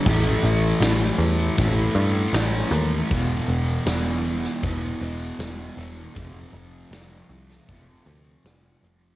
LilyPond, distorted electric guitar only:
\new Staff \with { instrumentName = "Distorted electric guitar" } { \clef bass \time 4/4 \key e \phrygian \tempo 4 = 79 <a, e a>4 <a, e a>4 <a, e a>8 <e a>4 <e a>8 | <e, b, e>4 <e, b, e>4 <e, b, e>8 <b, e>4 <b, e>8 | <f, c f>4 <f, c f>4 <f, c f>8 <c f>4 <c f>8 | }